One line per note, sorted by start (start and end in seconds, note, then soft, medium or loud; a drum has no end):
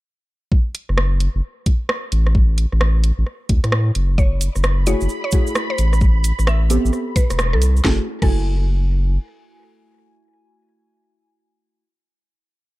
0.52 kick loud
0.75 open hi-hat loud
0.89 1.28 F#1 medium
0.89 cross-stick soft
0.98 cross-stick loud
1.20 open hi-hat loud
1.35 1.41 F#1 medium
1.66 kick medium
1.66 open hi-hat loud
1.89 cross-stick loud
2.12 2.66 A1 loud
2.12 open hi-hat loud
2.27 cross-stick medium
2.35 kick loud
2.58 open hi-hat loud
2.72 3.12 A1 loud
2.72 cross-stick soft
2.81 cross-stick loud
3.04 open hi-hat loud
3.18 3.24 A1 medium
3.27 cross-stick soft
3.49 3.60 D2 medium
3.49 kick loud
3.49 open hi-hat loud
3.64 3.91 A2 medium
3.64 cross-stick medium
3.64 open hi-hat medium
3.72 cross-stick loud
3.95 4.49 F#1 medium
3.95 open hi-hat loud
4.18 4.40 C#5 loud
4.18 7.86 B5 medium
4.18 kick loud
4.18 cabasa soft
4.41 open hi-hat loud
4.41 cabasa loud
4.55 4.95 F#1 loud
4.55 cross-stick soft
4.55 cabasa medium
4.63 cross-stick loud
4.63 cabasa soft
4.87 5.02 A3 medium
4.87 5.02 E4 medium
4.87 5.02 F#4 medium
4.87 5.02 G#4 medium
4.87 5.09 C#5 medium
4.87 open hi-hat loud
4.87 cabasa medium
5.01 5.07 F#1 medium
5.01 cabasa soft
5.09 cabasa soft
5.24 5.52 C#5 loud
5.31 5.77 A3 medium
5.31 5.77 E4 medium
5.31 5.77 F#4 medium
5.31 5.77 G#4 medium
5.31 kick loud
5.31 open hi-hat loud
5.31 cabasa loud
5.47 cabasa medium
5.55 cross-stick loud
5.55 cabasa soft
5.70 5.98 C5 medium
5.78 6.32 A1 loud
5.78 open hi-hat loud
5.78 cabasa medium
5.93 cross-stick medium
5.93 cabasa soft
6.01 kick loud
6.01 cabasa soft
6.24 open hi-hat loud
6.24 cabasa loud
6.39 6.78 A1 loud
6.39 cross-stick soft
6.39 cabasa medium
6.47 6.69 E5 loud
6.47 cross-stick loud
6.47 cabasa soft
6.70 7.83 B3 medium
6.70 7.84 C4 medium
6.70 7.83 G4 medium
6.70 7.84 A4 medium
6.70 open hi-hat loud
6.70 cabasa loud
6.85 6.91 A1 medium
6.85 cabasa medium
6.93 cross-stick soft
6.93 cabasa soft
7.16 7.38 B4 medium
7.16 kick loud
7.16 open hi-hat loud
7.16 cabasa loud
7.30 7.55 E1 loud
7.30 cross-stick medium
7.30 open hi-hat medium
7.30 cabasa medium
7.39 cross-stick loud
7.39 cabasa soft
7.53 7.81 C2 medium
7.53 7.75 A4 medium
7.62 open hi-hat loud
7.62 cabasa medium
7.77 cabasa medium
7.84 8.00 F#1 loud
7.84 8.00 A3 medium
7.84 8.00 E4 medium
7.84 8.00 F#4 medium
7.84 8.00 G#4 loud
7.84 8.00 A4 medium
7.84 kick loud
7.84 snare medium
8.22 9.18 F#1 medium
8.22 11.83 A3 medium
8.22 11.83 E4 medium
8.22 11.83 F#4 medium
8.22 11.84 A4 medium
8.22 11.83 G#5 medium
8.22 kick loud
8.22 crash medium